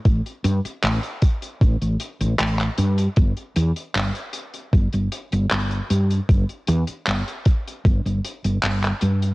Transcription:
<<
  \new Staff \with { instrumentName = "Fretless electric bass" } { \clef bass \time 4/4 \key a \dorian \tempo 4 = 77 a,,16 r16 g,16 r16 a,,16 r8. a,,16 a,,16 r16 a,,16 a,,16 r16 g,16 r16 | g,,16 r16 e,16 r16 g,,16 r8. g,,16 g,,16 r16 g,,16 g,,16 r16 g,16 r16 | g,,16 r16 e,16 r16 g,,16 r8. g,,16 g,,16 r16 g,,16 g,,16 r16 g,16 r16 | }
  \new DrumStaff \with { instrumentName = "Drums" } \drummode { \time 4/4 <hh bd>16 hh16 hh16 hh16 <hc hh>16 hh16 <hh bd>16 hh16 <hh bd>16 hh16 hh16 hh16 <hc hh>16 <hc hh>16 hh16 hh16 | <hh bd>16 hh16 hh16 hh16 <hc hh>16 hh16 hh16 hh16 <hh bd>16 hh16 hh16 hh16 <hc hh>16 hh16 hh16 hh16 | <hh bd>16 hh16 hh16 hh16 <hc hh>16 hh16 <hh bd>16 hh16 <hh bd>16 hh16 hh16 hh16 <hc hh>16 <hc hh>16 hh16 hh16 | }
>>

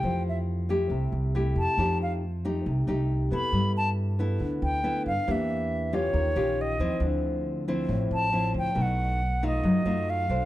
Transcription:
<<
  \new Staff \with { instrumentName = "Flute" } { \time 4/4 \key f \lydian \tempo 4 = 138 g''8 e''8 r2 r8 a''8~ | a''8 f''8 r2 r8 b''8~ | b''8 a''8 r4. g''4 f''8 | e''4. cis''4. dis''4 |
r2 r8 a''4 g''8 | fis''4. dis''4. eis''4 | }
  \new Staff \with { instrumentName = "Nylon-string guitar" } { \time 4/4 \key f \lydian << { <a e' g'>4. <a e' g'>4. <a e' g'>4 | <a ees' g'>4 r8 <a ees' g'>4 <a ees' g'>4 <b e' a'>8~ | <b e' a'>4. <b e' a'>4. <b e' a'>8 r8 | <bes d' g'>4. <cis' f' g'>4 <cis' eis' g'>4 <eis c' e'>8~ |
<eis c' e'>4. <f c' e'>4. <f c' e'>4 | <a dis'>4 r8 <a dis' eis'>4 <a dis' eis'>4 <d' a' c''>8 | } \\ { f2 c2 | f2 c2 | g2 d2 | e2 dis2 |
d2 a,2 | b,2 fis2 | } >> }
  \new Staff \with { instrumentName = "Upright bass" } { \clef bass \time 4/4 \key f \lydian f,2 c,8 c,4 f,16 r16 | f,2 c,8 c,4 f,16 r16 | g,2 d,8 d,4 g,16 r16 | e,2 dis,8 ais,,4 dis,16 r16 |
d,2 a,,8 a,,4 d,16 r16 | b,,2 fis,8 fis,4 b,,16 r16 | }
>>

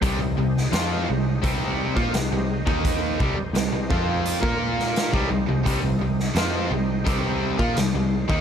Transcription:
<<
  \new Staff \with { instrumentName = "Tonewheel organ" } { \time 4/4 \key c \minor \tempo 4 = 85 <ees' g' c'' ees''>1 | <g' c'' ees''>2~ <g' c'' ees''>16 <bes f' bes' f''>4 <ees' g' c'' ees''>8.~ | <ees' g' c'' ees''>2.~ <ees' g' c'' ees''>16 <ees' c''>8. | }
  \new Staff \with { instrumentName = "Distorted electric guitar" } { \clef bass \time 4/4 \key c \minor <c g>16 <c g>16 <c g>8 <f c' f'>8 <c g>8 <c g c'>8. <bes f'>16 <c g>16 <c g>8 <ees bes ees'>16~ | <ees bes ees'>8 <c g>16 r16 <c g>16 <c g>16 <f c' f'>8. <bes f' bes'>4 <c g>16 <c g>16 <c g>16 | <c g>16 <c g>16 <c g>8 <f c' f'>8 <c g>8 <c g c'>8. <bes f'>16 <c g>16 <c g>8 <ees bes ees'>16 | }
  \new Staff \with { instrumentName = "Distorted electric guitar" } { \clef bass \time 4/4 \key c \minor <c g>16 <c g>16 <c g>8 <f c' f'>8 <c g>8 <c g c'>8. <bes f'>16 <c g>16 <c g>8 <ees bes ees'>16~ | <ees bes ees'>8 <c g>16 r16 <c g>16 <c g>16 <f c' f'>8. <bes f' bes'>4 <c g>16 <c g>16 <c g>16 | <c g>16 <c g>16 <c g>8 <f c' f'>8 <c g>8 <c g c'>8. <bes f'>16 <c g>16 <c g>8 <ees bes ees'>16 | }
  \new Staff \with { instrumentName = "Overdriven electric guitar" } { \clef bass \time 4/4 \key c \minor <c g>16 <c g>16 <c g>8 <f c' f'>8 <c g>8 <c g c'>8. <bes f'>16 <c g>16 <c g>8 <ees bes ees'>16~ | <ees bes ees'>8 <c g>16 r16 <c g>16 <c g>16 <f c' f'>8. <bes f' bes'>4 <c g>16 <c g>16 <c g>16 | <c g>16 <c g>16 <c g>8 <f c' f'>8 <c g>8 <c g c'>8. <bes f'>16 <c g>16 <c g>8 <ees bes ees'>16 | }
  \new Staff \with { instrumentName = "Picked electric bass" } { \clef bass \time 4/4 \key c \minor c,16 c,16 c,8 f,8 c,8 c,8. bes,16 c,16 c,8 ees,16~ | ees,8 c,16 r16 c,16 c,16 f,8. bes,4 c,16 c,16 c,16 | c,16 c,16 c,8 f,8 c,8 c,8. bes,16 c,16 c,8 ees,16 | }
  \new DrumStaff \with { instrumentName = "Drums" } \drummode { \time 4/4 <hh bd>8. sn16 <hh sn>4 <hh bd>8. bd16 <hh sn>8. bd16 | <hh bd>8 bd8 <hh sn>8 bd8 hh16 bd8 sn16 <hh sn>16 bd8. | <hh bd>8. sn16 <hh sn>4 <hh bd>8. bd16 <hh sn>8. bd16 | }
>>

